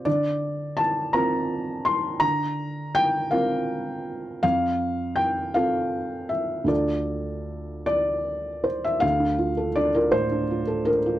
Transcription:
\new Staff \with { instrumentName = "Felt piano" } { \time 6/8 \key d \minor \tempo 4. = 54 << { d''4 a''8 bes''4 c'''8 | bes''4 g''8 f''4. | f''4 g''8 f''4 e''8 | d''4. d''4 c''16 e''16 |
f''4 d''16 bes'16 c''4 bes'8 | } \\ { d4. <c' f' bes'>4. | d4. <c' f' bes'>4. | f,4. <c' f' a'>4. | <d, d' f' a'>2. |
d,16 d'16 f'16 a'16 d'16 f'16 a,16 d'16 f'16 a'16 d'16 f'16 | } >> }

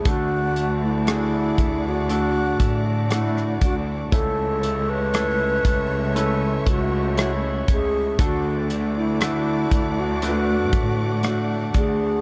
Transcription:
<<
  \new Staff \with { instrumentName = "String section" } { \time 4/4 \key d \lydian \tempo 4 = 59 << { <d'' fis'' d'''>1 | <cis'' e'' cis'''>1 | <d'' fis'' d'''>1 | } \\ { a1~ | a1 | a1 | } >> }
  \new Staff \with { instrumentName = "Alto flute" } { \time 4/4 \key d \lydian fis'8. e'16 e'8. fis'16 fis'8. r16 e'8 fis'8 | a'8. b'4~ b'16 a'8 fis'8 fis'8 gis'8 | fis'8 r16 e'16 e'8. fis'16 fis'4 fis'8 gis'8 | }
  \new Staff \with { instrumentName = "Grand piano" } { \time 4/4 \key d \lydian <a d' fis' a'>4 <a d' fis' gis'>4 <a d' fis' a'>4 <a d' fis' a'>4 | <a cis' e' a'>4 <a cis' e' a'>4 <a cis' e' b'>4 <a cis' e' cis''>4 | <a d' fis' a'>4 <a d' fis' a'>4 <a d' fis' b'>4 <a d' fis'>4 | }
  \new Staff \with { instrumentName = "Grand piano" } { \clef bass \time 4/4 \key d \lydian d4. r2 r8 | cis4. r2 r8 | d4. r2 r8 | }
  \new Staff \with { instrumentName = "Clean electric guitar" } { \time 4/4 \key d \lydian d8 a8 d'8 a8 d'8 a8 fis'8 d'8 | cis8 a8 cis'8 a8 cis'8 a8 e'8 cis'8 | d8 a8 d'8 a8 d'8 a8 fis'8 d'8 | }
  \new Staff \with { instrumentName = "Cello section" } { \clef bass \time 4/4 \key d \lydian d,4. d,4 a,4 d,8 | cis,4. cis,4 cis,4 cis,8 | d,4. d,4 a,4 d,8 | }
  \new DrumStaff \with { instrumentName = "Drums" } \drummode { \time 4/4 <hh bd>8 hh8 <hh ss>8 <hh bd>8 hh8 <hh bd>8 <hh ss>16 ss16 <hh bd>8 | <hh bd>8 hh8 <hh ss>8 <hh bd>8 hh8 <hh bd>8 <hh ss>8 <hh bd>8 | <hh bd>8 hh8 <hh ss>8 <hh bd>8 hh8 <hh bd>8 <hh ss>8 <hh bd>8 | }
>>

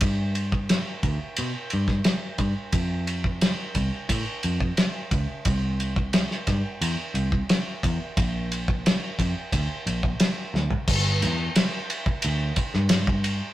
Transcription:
<<
  \new Staff \with { instrumentName = "Picked electric bass" } { \clef bass \time 4/4 \key c \major \tempo 4 = 88 g,4. d,16 r16 b,16 r16 g,8 r8 g,16 r16 | f,4. c,16 r16 a,16 r16 f,8 r8 cis,16 r16 | c,4. g,16 r16 e,16 r16 c,8 r8 e,16 r16 | bes,,4. f,16 r16 d,16 r16 bes,,8 r8 d,16 r16 |
g,,8 e,8 r4 d,8 r16 g,4~ g,16 | }
  \new DrumStaff \with { instrumentName = "Drums" } \drummode { \time 4/4 <bd cymr>8 cymr16 bd16 <cymr sn>8 <bd cymr>8 cymr8 cymr16 <bd sn>16 <cymr sn>8 <bd cymr>8 | <bd cymr>8 cymr16 bd16 <cymr sn>8 <bd cymr>8 <bd cymr>8 cymr16 bd16 <cymr sn>8 <bd cymr>8 | <bd cymr>8 cymr16 bd16 <cymr sn>16 sn16 <bd cymr sn>8 cymr8 cymr16 bd16 <cymr sn>8 <bd cymr>8 | <bd cymr>8 cymr16 bd16 <cymr sn>8 <bd cymr>8 <bd cymr>8 cymr16 bd16 <cymr sn>8 sn16 tomfh16 |
<cymc bd>8 <cymr sn>8 <cymr sn>8 cymr16 bd16 cymr8 <bd cymr>16 sn16 <cymr sn>16 bd16 cymr8 | }
>>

